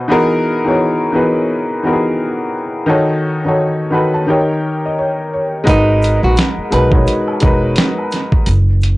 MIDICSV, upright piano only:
0, 0, Header, 1, 2, 480
1, 0, Start_track
1, 0, Key_signature, 5, "minor"
1, 0, Tempo, 697674
1, 64, Time_signature, 4, 2, 24, 8
1, 6175, End_track
2, 0, Start_track
2, 0, Title_t, "Upright piano"
2, 0, Program_c, 0, 0
2, 0, Control_c, 0, 64, 127
2, 0, Note_on_c, 0, 47, 87
2, 0, Note_on_c, 0, 59, 86
2, 0, Note_on_c, 0, 63, 76
2, 0, Note_on_c, 0, 69, 76
2, 0, Note_on_c, 0, 72, 88
2, 0, Note_on_c, 0, 75, 59
2, 0, Note_on_c, 0, 78, 66
2, 55, Note_on_c, 0, 52, 96
2, 60, Note_off_c, 0, 59, 0
2, 60, Note_on_c, 0, 59, 93
2, 65, Note_off_c, 0, 63, 0
2, 65, Note_on_c, 0, 63, 86
2, 70, Note_on_c, 0, 66, 97
2, 72, Control_c, 0, 64, 0
2, 74, Note_off_c, 0, 75, 0
2, 75, Note_on_c, 0, 68, 96
2, 76, Note_off_c, 0, 47, 0
2, 76, Note_off_c, 0, 72, 0
2, 76, Note_off_c, 0, 78, 0
2, 78, Note_off_c, 0, 69, 0
2, 79, Note_on_c, 0, 70, 124
2, 191, Control_c, 0, 64, 127
2, 297, Note_off_c, 0, 52, 0
2, 299, Note_off_c, 0, 59, 0
2, 302, Note_off_c, 0, 63, 0
2, 305, Note_off_c, 0, 66, 0
2, 307, Note_off_c, 0, 68, 0
2, 309, Note_off_c, 0, 70, 0
2, 445, Note_on_c, 0, 52, 81
2, 450, Note_on_c, 0, 59, 63
2, 455, Note_on_c, 0, 63, 68
2, 459, Note_on_c, 0, 66, 75
2, 464, Note_on_c, 0, 68, 71
2, 470, Note_on_c, 0, 73, 90
2, 681, Note_off_c, 0, 52, 0
2, 684, Note_off_c, 0, 59, 0
2, 686, Note_off_c, 0, 63, 0
2, 688, Note_off_c, 0, 66, 0
2, 691, Note_off_c, 0, 68, 0
2, 693, Note_off_c, 0, 73, 0
2, 771, Note_on_c, 0, 52, 80
2, 776, Note_on_c, 0, 59, 73
2, 781, Note_on_c, 0, 63, 75
2, 787, Note_on_c, 0, 66, 72
2, 791, Note_on_c, 0, 68, 76
2, 796, Note_on_c, 0, 71, 79
2, 1106, Note_off_c, 0, 52, 0
2, 1109, Note_off_c, 0, 59, 0
2, 1111, Note_off_c, 0, 63, 0
2, 1114, Note_off_c, 0, 66, 0
2, 1116, Note_off_c, 0, 68, 0
2, 1119, Note_off_c, 0, 71, 0
2, 1260, Note_on_c, 0, 52, 76
2, 1265, Note_on_c, 0, 59, 71
2, 1270, Note_on_c, 0, 63, 70
2, 1276, Note_on_c, 0, 66, 73
2, 1281, Note_on_c, 0, 67, 56
2, 1285, Note_on_c, 0, 70, 85
2, 1325, Note_off_c, 0, 67, 0
2, 1325, Note_on_c, 0, 68, 70
2, 1736, Note_off_c, 0, 52, 0
2, 1739, Note_off_c, 0, 59, 0
2, 1741, Note_off_c, 0, 63, 0
2, 1744, Note_off_c, 0, 66, 0
2, 1749, Note_off_c, 0, 70, 0
2, 1769, Note_off_c, 0, 68, 0
2, 1968, Note_on_c, 0, 51, 98
2, 1974, Note_on_c, 0, 63, 87
2, 1981, Note_on_c, 0, 66, 88
2, 1987, Note_on_c, 0, 69, 93
2, 1992, Control_c, 0, 64, 0
2, 1993, Note_on_c, 0, 73, 107
2, 2096, Control_c, 0, 64, 127
2, 2213, Note_off_c, 0, 51, 0
2, 2216, Note_off_c, 0, 63, 0
2, 2220, Note_off_c, 0, 66, 0
2, 2223, Note_off_c, 0, 69, 0
2, 2226, Note_off_c, 0, 73, 0
2, 2371, Note_on_c, 0, 51, 73
2, 2378, Note_on_c, 0, 63, 71
2, 2384, Note_on_c, 0, 66, 70
2, 2390, Note_on_c, 0, 69, 66
2, 2396, Note_on_c, 0, 73, 88
2, 2604, Note_off_c, 0, 51, 0
2, 2608, Note_off_c, 0, 63, 0
2, 2610, Note_off_c, 0, 66, 0
2, 2614, Note_off_c, 0, 69, 0
2, 2617, Note_off_c, 0, 73, 0
2, 2686, Note_on_c, 0, 51, 77
2, 2692, Note_on_c, 0, 63, 66
2, 2698, Note_on_c, 0, 66, 75
2, 2698, Note_on_c, 0, 83, 62
2, 2705, Note_on_c, 0, 69, 70
2, 2711, Note_on_c, 0, 71, 84
2, 2832, Note_off_c, 0, 83, 0
2, 2847, Note_on_c, 0, 81, 63
2, 2925, Note_off_c, 0, 51, 0
2, 2931, Note_off_c, 0, 63, 0
2, 2935, Note_on_c, 0, 51, 76
2, 2938, Note_off_c, 0, 81, 0
2, 2941, Note_off_c, 0, 66, 0
2, 2941, Note_on_c, 0, 63, 79
2, 2945, Note_off_c, 0, 69, 0
2, 2948, Note_off_c, 0, 71, 0
2, 2948, Note_on_c, 0, 67, 76
2, 2948, Note_on_c, 0, 79, 62
2, 2954, Control_c, 0, 64, 0
2, 2954, Note_on_c, 0, 70, 82
2, 2961, Note_on_c, 0, 73, 89
2, 3085, Control_c, 0, 64, 127
2, 3301, Note_off_c, 0, 79, 0
2, 3341, Note_on_c, 0, 75, 66
2, 3419, Note_off_c, 0, 73, 0
2, 3425, Note_off_c, 0, 75, 0
2, 3430, Note_on_c, 0, 73, 70
2, 3650, Note_off_c, 0, 73, 0
2, 3671, Note_on_c, 0, 73, 64
2, 3716, Note_off_c, 0, 51, 0
2, 3719, Note_off_c, 0, 63, 0
2, 3722, Note_off_c, 0, 67, 0
2, 3726, Note_off_c, 0, 70, 0
2, 3879, Note_on_c, 0, 56, 102
2, 3886, Note_on_c, 0, 63, 83
2, 3891, Note_off_c, 0, 73, 0
2, 3892, Note_on_c, 0, 66, 86
2, 3898, Note_on_c, 0, 70, 87
2, 3905, Note_on_c, 0, 71, 104
2, 3913, Control_c, 0, 64, 0
2, 4038, Control_c, 0, 64, 127
2, 4366, Note_off_c, 0, 56, 0
2, 4369, Note_off_c, 0, 63, 0
2, 4372, Note_off_c, 0, 66, 0
2, 4375, Note_off_c, 0, 70, 0
2, 4379, Note_off_c, 0, 71, 0
2, 4612, Note_on_c, 0, 56, 74
2, 4619, Note_on_c, 0, 63, 64
2, 4624, Note_on_c, 0, 66, 78
2, 4632, Note_on_c, 0, 70, 64
2, 4638, Note_on_c, 0, 71, 79
2, 4711, Note_off_c, 0, 56, 0
2, 4714, Note_off_c, 0, 63, 0
2, 4717, Note_off_c, 0, 66, 0
2, 4721, Note_off_c, 0, 70, 0
2, 4724, Note_off_c, 0, 71, 0
2, 4754, Note_on_c, 0, 56, 69
2, 4761, Note_on_c, 0, 63, 63
2, 4767, Note_on_c, 0, 66, 72
2, 4773, Note_on_c, 0, 70, 64
2, 4780, Note_on_c, 0, 73, 83
2, 4995, Note_off_c, 0, 56, 0
2, 4999, Note_off_c, 0, 63, 0
2, 5002, Note_off_c, 0, 66, 0
2, 5005, Note_off_c, 0, 70, 0
2, 5009, Note_off_c, 0, 73, 0
2, 5095, Note_on_c, 0, 56, 80
2, 5101, Note_on_c, 0, 63, 75
2, 5107, Note_on_c, 0, 66, 77
2, 5113, Note_on_c, 0, 70, 74
2, 5121, Note_on_c, 0, 71, 99
2, 5746, Note_off_c, 0, 56, 0
2, 5749, Note_off_c, 0, 63, 0
2, 5752, Note_off_c, 0, 66, 0
2, 5755, Note_off_c, 0, 70, 0
2, 5759, Note_off_c, 0, 71, 0
2, 5835, Control_c, 0, 64, 0
2, 5959, Control_c, 0, 64, 127
2, 6175, End_track
0, 0, End_of_file